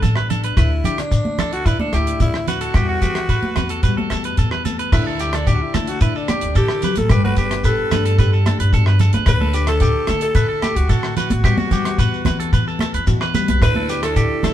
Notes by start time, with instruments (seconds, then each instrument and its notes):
Already playing: nylon-string guitar G2 D3 B3 D4 G4, alto saxophone A4
0.02 upright bass A1, clean electric guitar A4, kick, closed hi-hat, low conga, shekere
0.15 clean electric guitar B4, cross-stick
0.29 nylon-string guitar D4, clean electric guitar A4, closed hi-hat, low conga, shekere
0.44 clean electric guitar B4, closed hi-hat
0.56 upright bass D2, nylon-string guitar D3, alto saxophone E4, clean electric guitar B4, kick, cross-stick, closed hi-hat, shekere
0.84 upright bass D3, nylon-string guitar D4, clean electric guitar G4, closed hi-hat, low conga, shekere
0.98 alto saxophone D4, cross-stick, closed hi-hat
1.10 muted nylon-string guitar stroke, kick, closed hi-hat, shekere
1.25 high conga
1.38 upright bass D2, nylon-string guitar E4, clean electric guitar A4, cross-stick, closed hi-hat, low conga, shekere
1.53 alto saxophone F#4, closed hi-hat
1.66 nylon-string guitar D4, alto saxophone E4, clean electric guitar B4, kick, closed hi-hat, shekere
1.79 alto saxophone D4, clean electric guitar A4, high conga
1.92 upright bass D2, nylon-string guitar A2, alto saxophone E4, clean electric guitar G4, cross-stick, closed hi-hat, shekere
2.07 closed hi-hat
2.20 upright bass D2, alto saxophone E4, kick, closed hi-hat, low conga, shekere
2.34 cross-stick
2.48 nylon-string guitar E4, alto saxophone F#4, clean electric guitar B4, closed hi-hat, low conga, shekere
2.61 clean electric guitar A4, closed hi-hat
2.74 nylon-string guitar E2 E3 G3 B3, upright bass E2, clean electric guitar G4, kick, cross-stick, closed hi-hat, shekere
2.89 clean electric guitar F#4
3.02 upright bass E3, nylon-string guitar B3, clean electric guitar G4, kick, closed hi-hat, shekere
3.15 cross-stick, closed hi-hat
3.29 nylon-string guitar E3, clean electric guitar B4, kick, closed hi-hat, shekere
3.43 high conga
3.56 upright bass E2, nylon-string guitar B3, clean electric guitar B4, cross-stick, closed hi-hat, low conga, shekere
3.69 clean electric guitar A4, closed hi-hat
3.83 nylon-string guitar G3, clean electric guitar B4, kick, closed hi-hat, shekere
3.97 clean electric guitar A4, high conga
4.10 upright bass E2, nylon-string guitar B2, clean electric guitar A4, cross-stick, closed hi-hat, shekere
4.24 clean electric guitar B4, closed hi-hat
4.37 upright bass E2, clean electric guitar A4, kick, closed hi-hat, shekere
4.51 clean electric guitar B4, cross-stick
4.65 nylon-string guitar B3, clean electric guitar A4, closed hi-hat, high conga, low conga, shekere
4.79 clean electric guitar B4, closed hi-hat
4.92 upright bass D2, nylon-string guitar D3 A3 D4, alto saxophone E4, clean electric guitar B4, kick, cross-stick, crash, shekere
5.07 clean electric guitar A4
5.19 nylon-string guitar D4, clean electric guitar G4, closed hi-hat, shekere
5.33 alto saxophone D4, clean electric guitar A4, cross-stick, closed hi-hat, shekere
5.47 nylon-string guitar E4, clean electric guitar G4, kick, closed hi-hat, shekere
5.54 alto saxophone F#4
5.62 alto saxophone E4
5.74 upright bass D3, nylon-string guitar A3 D4, clean electric guitar A4, cross-stick, closed hi-hat, high conga, low conga, shekere
5.87 alto saxophone F#4, closed hi-hat
6.01 nylon-string guitar D4, alto saxophone E4, clean electric guitar B4, kick, closed hi-hat, shekere
6.15 alto saxophone D4, clean electric guitar A4, shekere
6.28 nylon-string guitar E4, clean electric guitar G4, cross-stick, closed hi-hat, high conga, shekere
6.41 upright bass D2, closed hi-hat
6.55 upright bass D3, nylon-string guitar E3, alto saxophone G4, clean electric guitar A4, kick, closed hi-hat, shekere
6.68 cross-stick, shekere
6.82 nylon-string guitar F#3, clean electric guitar B4, closed hi-hat, low conga, shekere
6.96 upright bass A1, alto saxophone A4, muted clean electric guitar stroke, closed hi-hat, high conga, shekere
7.09 upright bass G1, nylon-string guitar G2, clean electric guitar G4, alto saxophone B4, kick, cross-stick, closed hi-hat, shekere
7.25 clean electric guitar F#4, alto saxophone B4, high conga
7.36 nylon-string guitar B3, clean electric guitar G4, kick, closed hi-hat, shekere
7.51 cross-stick, closed hi-hat, shekere
7.64 nylon-string guitar G4, alto saxophone A4, clean electric guitar B4, kick, closed hi-hat, shekere
7.91 upright bass G2, nylon-string guitar D3 D4, clean electric guitar B4, cross-stick, closed hi-hat, high conga, low conga, shekere
8.06 clean electric guitar A4, closed hi-hat
8.19 nylon-string guitar G4, clean electric guitar B4, kick, closed hi-hat, shekere
8.33 clean electric guitar A4, shekere
8.46 nylon-string guitar D4, clean electric guitar A4, cross-stick, closed hi-hat, high conga, shekere
8.59 upright bass G1, clean electric guitar B4, closed hi-hat
8.72 upright bass G2, nylon-string guitar B2, clean electric guitar A4, kick, closed hi-hat, shekere
8.86 clean electric guitar B4, cross-stick, shekere
8.99 nylon-string guitar C#3, clean electric guitar A4, closed hi-hat, low conga, shekere
9.13 upright bass D2, clean electric guitar B4, closed hi-hat, high conga, shekere
9.26 upright bass D2, nylon-string guitar D3, clean electric guitar B4, alto saxophone B4, kick, cross-stick, closed hi-hat, shekere
9.41 clean electric guitar A4, high conga
9.54 nylon-string guitar D4, clean electric guitar G4, closed hi-hat, shekere
9.67 alto saxophone A4, clean electric guitar A4, cross-stick, closed hi-hat, shekere
9.80 nylon-string guitar E4, clean electric guitar G4, kick, closed hi-hat, shekere
10.07 upright bass D3, nylon-string guitar A3 E4, clean electric guitar A4, cross-stick, closed hi-hat, high conga, shekere
10.21 alto saxophone A4, closed hi-hat
10.35 nylon-string guitar E4, clean electric guitar B4, kick, closed hi-hat, shekere
10.49 clean electric guitar A4
10.62 nylon-string guitar E4, clean electric guitar G4, cross-stick, closed hi-hat, high conga, shekere
10.76 upright bass D2, alto saxophone F#4, closed hi-hat
10.89 nylon-string guitar A2 E4, upright bass D3, clean electric guitar A4, kick, closed hi-hat, shekere
11.03 cross-stick, shekere
11.16 alto saxophone F#4, clean electric guitar B4, muted nylon-string guitar stroke, closed hi-hat, low conga, shekere
11.30 upright bass A1, muted clean electric guitar stroke, closed hi-hat, high conga
11.44 nylon-string guitar E2 E3 G3 B3, upright bass E2, clean electric guitar G4, kick, cross-stick, closed hi-hat, shekere
11.57 clean electric guitar F#4, high conga, shekere
11.71 nylon-string guitar G3, clean electric guitar G4, kick, closed hi-hat, low conga, shekere
11.85 cross-stick, closed hi-hat
11.98 nylon-string guitar B3, clean electric guitar B4, kick, closed hi-hat, shekere
12.14 shekere
12.25 nylon-string guitar E3 B3, upright bass E3, clean electric guitar B4, cross-stick, closed hi-hat, high conga, low conga, shekere
12.40 clean electric guitar A4, closed hi-hat
12.53 nylon-string guitar B3, clean electric guitar B4, kick, closed hi-hat, shekere
12.68 clean electric guitar A4, shekere
12.79 nylon-string guitar B3, clean electric guitar A4, cross-stick, closed hi-hat, high conga, shekere
12.94 upright bass E2, clean electric guitar B4, closed hi-hat, shekere
13.06 nylon-string guitar B2 F#4, upright bass E3, muted clean electric guitar stroke, kick, closed hi-hat, shekere
13.21 clean electric guitar B4, cross-stick, shekere
13.35 nylon-string guitar G3, clean electric guitar B4, closed hi-hat, high conga, low conga, shekere
13.48 upright bass B1, clean electric guitar B4, closed hi-hat, high conga, shekere
13.61 upright bass D2, nylon-string guitar D3, brass ensemble A3 D4 E4, alto saxophone B4, clean electric guitar B4, kick, cross-stick, closed hi-hat, shekere
13.75 clean electric guitar A4, high conga
13.89 nylon-string guitar B3, clean electric guitar G4, closed hi-hat, shekere
14.03 nylon-string guitar D4, alto saxophone A4, clean electric guitar A4, cross-stick, closed hi-hat, shekere
14.16 nylon-string guitar E4, clean electric guitar G4, kick, closed hi-hat, shekere
14.43 upright bass D3, nylon-string guitar A3 E4, clean electric guitar A4, cross-stick, closed hi-hat, high conga, low conga, shekere